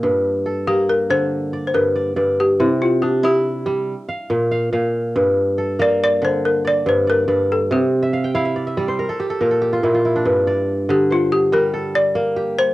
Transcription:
0.00 1.73 G2 medium
0.00 0.39 F5 medium
0.46 1.78 A4 medium
0.67 2.60 A#3 medium
0.67 0.89 G4 medium
0.67 1.95 A#4 medium
0.90 0.99 A#4 medium
1.10 2.65 D3 medium
1.10 1.66 C5 medium
1.53 1.95 D5 medium
1.67 1.74 C5 medium
1.74 2.15 G2 medium
1.74 2.34 A#4 medium
1.96 2.16 D5 medium
2.16 2.65 G2 medium
2.16 3.27 D5 medium
2.40 2.61 G4 medium
2.60 3.93 C3 medium
2.60 2.82 E4 medium
2.82 3.03 F4 medium
3.02 4.70 D4 medium
3.02 3.12 G4 medium
3.23 4.15 E4 medium
3.23 4.06 G4 medium
3.66 3.93 G3 medium
4.09 4.51 F5 medium
4.30 4.72 A#2 medium
4.51 4.72 F5 medium
4.73 5.21 A#2 medium
4.73 5.73 F5 medium
5.16 6.85 G2 medium
5.58 6.90 A4 medium
5.79 7.72 A#3 medium
5.79 7.07 A#4 medium
5.79 6.02 D5 medium
6.04 6.13 D5 medium
6.22 7.76 D3 medium
6.22 6.43 C5 medium
6.45 6.64 A#4 medium
6.65 7.07 D5 medium
6.65 6.86 D5 medium
6.86 7.27 G2 medium
6.86 7.09 C5 medium
7.07 7.52 A#4 medium
7.07 7.27 D5 medium
7.28 7.76 G2 medium
7.28 8.39 D5 medium
7.52 7.61 A4 medium
7.71 9.04 C3 medium
7.71 8.53 G4 medium
8.03 8.41 E5 medium
8.13 8.34 F5 medium
8.24 9.17 G5 medium
8.35 9.79 E4 medium
8.35 8.73 F5 medium
8.45 8.66 E5 medium
8.56 8.77 D5 medium
8.67 9.70 E5 medium
8.77 9.04 G3 medium
8.77 9.88 D5 medium
8.88 10.07 C5 medium
8.99 9.36 A#4 medium
9.09 9.30 A4 medium
9.20 9.61 G4 medium
9.30 9.50 A4 medium
9.41 9.82 A#2 medium
9.41 10.68 A#4 medium
9.51 9.89 A4 medium
9.62 11.03 G4 medium
9.73 9.94 F4 medium
9.83 10.31 A#2 medium
9.83 10.05 E4 medium
9.94 11.46 F4 medium
10.05 11.62 E4 medium
10.16 11.84 D4 medium
10.25 12.59 G2 medium
10.47 11.58 D5 medium
10.89 12.74 D3 medium
10.89 11.00 G4 medium
11.10 11.33 F4 medium
11.10 12.29 C5 medium
11.32 11.41 G4 medium
11.52 12.74 G3 medium
11.52 12.74 A#4 medium
11.52 11.96 A#4 medium
11.74 12.74 A4 medium
11.95 12.60 D5 loud
12.15 12.74 A#3 medium
12.36 12.74 G4 medium
12.59 12.74 C5 medium

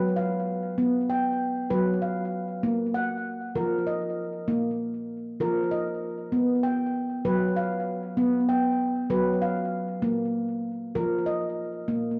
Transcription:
0.00 0.57 F#3 medium
0.00 0.47 B4 medium
0.00 0.16 G5 medium
0.16 1.09 F5 medium
0.78 1.50 B3 medium
1.10 2.02 G5 medium
1.70 2.42 F#3 medium
1.70 2.32 B4 medium
2.02 2.94 F5 medium
2.63 3.35 A#3 medium
2.94 3.86 F#5 medium
3.55 4.27 F3 medium
3.55 4.17 A#4 medium
3.87 4.79 D#5 medium
4.48 5.19 A#3 medium
5.40 6.12 F3 medium
5.40 6.02 A#4 medium
5.71 6.64 D#5 medium
6.32 6.94 B3 medium
6.63 7.56 G5 medium
7.25 7.97 F#3 medium
7.25 7.87 B4 medium
7.56 8.49 F5 medium
8.17 8.89 B3 loud
8.49 9.41 G5 medium
9.10 9.82 F#3 loud
9.10 9.72 B4 medium
9.42 10.34 F5 medium
10.02 10.74 A#3 medium
10.95 11.68 F3 medium
10.95 11.57 A#4 medium
11.26 12.19 D#5 medium
11.88 12.20 A#3 medium

